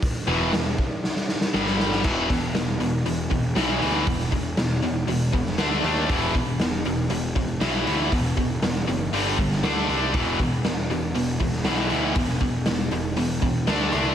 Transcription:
<<
  \new Staff \with { instrumentName = "Overdriven electric guitar" } { \clef bass \time 4/4 \key e \minor \tempo 4 = 119 r8 <e, b, e>8 <e, b,>8 r4. <g, d g>4 | <e, b, e>8 <e, b,>8 <e, b,>8 <e, b,>8 <e, b,>8 <e, b,>8 <e, b, e>8 <e, b, e>8 | <e, b,>8 <e, b,>8 <e, b,>8 <e, b,>8 <e, b,>8 <e, b,>8 <d a d'>8 <d a d'>8 | <e, b, e>8 <e, b,>8 <e, b,>8 <e, b,>8 <e, b,>8 <e, b,>8 <e, b, e>8 <e, b, e>8 |
<e, b,>8 <e, b,>8 <e, b,>8 <e, b,>8 <g, d g>8 <g, d>8 <d a d'>8 <d a d'>8 | <e, b, e>8 <e, b,>8 <e, b,>8 <e, b,>8 <e, b,>8 <e, b,>8 <e, b, e>8 <e, b, e>8 | <e, b,>8 <e, b,>8 <e, b,>8 <e, b,>8 <e, b,>8 <e, b,>8 <d a d'>8 <d a d'>8 | }
  \new Staff \with { instrumentName = "Picked electric bass" } { \clef bass \time 4/4 \key e \minor r8 e,,8 e,,8 r4. g,,4 | e,,8 e,,8 e,,8 e,,8 e,,8 e,,8 b,,8 d,8 | e,,8 e,,8 e,,8 e,,8 e,,8 e,,8 d,8 dis,8 | e,,8 e,,8 e,,8 e,,8 e,,8 e,,8 b,,8 d,8 |
e,,8 e,,8 e,,8 fis,,8 g,,8 g,,8 d,8 c,8 | e,,8 e,,8 e,,8 e,,8 e,,8 e,,8 b,,8 d,8 | e,,8 e,,8 e,,8 e,,8 e,,8 e,,8 d,8 c,8 | }
  \new DrumStaff \with { instrumentName = "Drums" } \drummode { \time 4/4 <hho bd>4 <hho sn>8 bd8 sn16 sn16 sn16 sn16 sn16 sn16 sn16 sn16 | <cymc bd>8 <hho bd>8 <hho sn>8 hho8 hho8 <hho bd>8 <hho sn>8 hho8 | <hho bd>16 sn16 <hho bd>8 <hho sn>8 hho8 hho8 <hho bd>16 sn16 <hho sn>8 hho8 | <hho bd>8 <hho bd>8 <hho sn>8 hho8 hho8 <hho bd>8 <hho sn>8 hho8 |
<hho bd>8 <hho bd>8 <hho sn>8 hho8 hho8 <hho bd>16 sn16 <hho sn>8 hho8 | <hho bd>8 <hho bd>8 <hho sn>8 hho8 hho8 <hho bd>16 sn16 <hho sn>8 hho8 | <hho bd>16 sn16 <hho bd>8 <hho sn>8 hho8 hho8 <hho bd>8 <hho sn>8 hho8 | }
>>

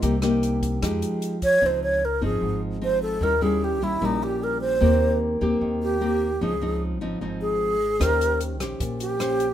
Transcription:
<<
  \new Staff \with { instrumentName = "Alto flute" } { \time 4/4 \key des \lydian \tempo 4 = 150 r2. r8 des''8 | c''8 des''8 bes'8 aes'4 r8 c''8 a'8 | bes'8 aes'8 g'8 fes'8 ees'8 g'8 bes'8 c''8~ | c''4 r4. g'4. |
aes'4 r4. aes'4. | bes'4 r4. g'4. | }
  \new Staff \with { instrumentName = "Nylon-string guitar" } { \time 4/4 \key des \lydian << { <bes ees' g'>8 <bes ees' g'>4. <aes ees' g'>4. r8 | <f c' ees'>4 r8 <f c' ees'>4. <f c' ees'>4 | <g des' fes'>8 <g des' fes'>4 <g des' fes'>8 <g des' fes'>2 | <bes c' g'>4. <bes c' g'>4. <bes c' g'>8 r8 |
<f c' ees'>8 <f c' ees'>4 <f c' ees'>8 <f c' ees'>4. r8 | <des' g' c''>4. <des' g' c''>4. <des' g' c''>8 r8 | } \\ { c2 f2 | des2 aes,2 | ees2 bes,2 | ees2 ees2 |
des2 aes,2 | ees2 bes,2 | } >> }
  \new Staff \with { instrumentName = "Upright bass" } { \clef bass \time 4/4 \key des \lydian c,2 f,8 r4. | des,4. aes,,8 aes,,2 | ees,4. bes,,8 bes,,2 | ees,4. ees,8 ees,2 |
des,4. aes,,8 aes,,2 | ees,4. bes,,8 bes,,2 | }
  \new DrumStaff \with { instrumentName = "Drums" } \drummode { \time 4/4 <hh bd>8 <hh ss>8 hh8 <hh bd>8 <hh bd ss>8 hh8 hh8 <hh bd>8 | r4 r4 r4 r4 | r4 r4 r4 r4 | r4 r4 r4 r4 |
r4 r4 r4 r4 | <hh bd ss>8 hh8 hh8 <hh ss>8 <hh bd>8 hh8 <hh ss>8 hh8 | }
>>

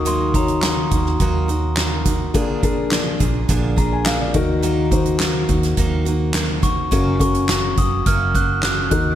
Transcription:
<<
  \new Staff \with { instrumentName = "Glockenspiel" } { \time 4/4 \key ees \dorian \tempo 4 = 105 c'''8 bes''4 r2 r8 | r1 | r2. r8 des'''8~ | des'''8 des'''4 ees'''8 f'''8 ges'''8 ges'''8 ges'''8 | }
  \new Staff \with { instrumentName = "Felt piano" } { \time 4/4 \key ees \dorian << { r1 | r2 r8 bes''16 aes''16 f''16 d''8 r16 | r1 | r1 | } \\ { <ees' ges' bes'>8 <ees' ges' des''>4. r2 | <d' aes' bes'>8 <d' aes' bes'>4. r4. <ees' ges' bes'>8~ | <ees' ges' bes'>8 <ees' ges' c''>4. r2 | <des' ges' bes'>8 <des' ges' bes'>4. r4. <ees' ges' bes'>8 | } >> }
  \new Staff \with { instrumentName = "Felt piano" } { \clef bass \time 4/4 \key ees \dorian ees4 r2. | bes,4. r2 ees8~ | ees4 r2. | r2. r8 ees8 | }
  \new Staff \with { instrumentName = "Steel-string acoustic guitar" } { \time 4/4 \key ees \dorian <ees ges bes ees' ges'>8 <bes ees' ges'>8 <ges bes ees' ges'>8 <bes ees' ges'>8 <ees ges bes ees' ges'>8 <bes ees' ges'>8 <ges bes ees' ges'>8 <bes ees' ges'>8 | <bes, d f bes d' aes'>8 <f bes d' aes'>8 <f bes d' aes'>8 <f bes d' aes'>8 <bes, d f bes d' aes'>8 <f bes d' aes'>8 <f bes d' aes'>8 <bes ees' ges'>8 | <ees ges bes ees' ges'>8 <bes ees' ges'>8 <ges bes ees' ges'>8 <bes ees' ges'>8 <ees ges bes ees' ges'>8 <bes ees' ges'>8 <ges bes ees' ges'>8 <bes ees' ges'>8 | <ges, des ges bes des' ges'>8 <ges bes des' ges'>8 <ges bes des' ges'>8 <ges bes des' ges'>8 <ges, des ges bes des' ges'>8 <ges bes des' ges'>8 <ges bes des' ges'>8 <bes ees' ges'>8 | }
  \new Staff \with { instrumentName = "Fingered electric bass" } { \clef bass \time 4/4 \key ees \dorian ees,4. ees,8 ees,2 | bes,,4. bes,,8 bes,,4. ees,8~ | ees,4. ees,8 ees,2 | ges,,4. ges,,8 ges,,4. ees,8 | }
  \new DrumStaff \with { instrumentName = "Drums" } \drummode { \time 4/4 hh8 <hh bd>16 hh16 <hc hh sn>8 <hh bd>16 sn16 <hh bd>8 hh8 <hc hh sn>8 <hh bd>8 | <hh bd>8 <hh bd>8 <hc hh sn>8 <hh bd>8 <hh bd>8 <hh bd>8 <hc hh sn>8 <hh bd>8 | hh8 <hh bd>16 hh16 <hc hh sn>8 <hh bd>16 <hh sn>16 <hh bd>8 hh8 <hc hh sn>8 <hh bd>8 | <hh bd>8 <hh bd>16 hh16 <hc hh sn>8 <hh bd>8 <hh bd>8 <hh bd>8 <hc hh sn>8 <hh bd>8 | }
>>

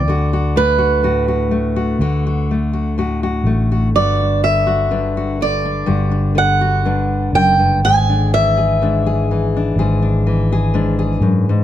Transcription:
<<
  \new Staff \with { instrumentName = "Steel-string acoustic guitar" } { \time 4/4 \key g \major \tempo 4 = 62 d''8 b'2 r4. | d''8 e''4 d''4 fis''4 g''8 | gis''8 e''2. r8 | }
  \new Staff \with { instrumentName = "Nylon-string guitar" } { \time 4/4 \key g \major << { fis'16 fis'8 fis'16 fis'16 fis'8 fis'16 fis'16 fis'8 fis'16 fis'16 fis'8 fis'16 | fis'16 d'8 fis'16 d'16 fis'8 d'16 fis'16 d'8 fis'16 d'4 | gis'16 d'8 gis'16 d'16 gis'8 d'16 gis'16 d'8 gis'16 d'16 gis'8. | } \\ { d8 a8 a,8 a8 d8 a8 a,8 a8 | g,8 d8 g,8 d8 g,8 d8 g,8 fis,16 g,16 | gis,8 e8 gis,8 e8 gis,8 e8 gis,8 fis,16 gis,16 | } >> }
  \new Staff \with { instrumentName = "Fingered electric bass" } { \clef bass \time 4/4 \key g \major d,2 d,4. a,,8 | g,,2 g,,4. fis,,8 | gis,,2 gis,,4. gis,8 | }
>>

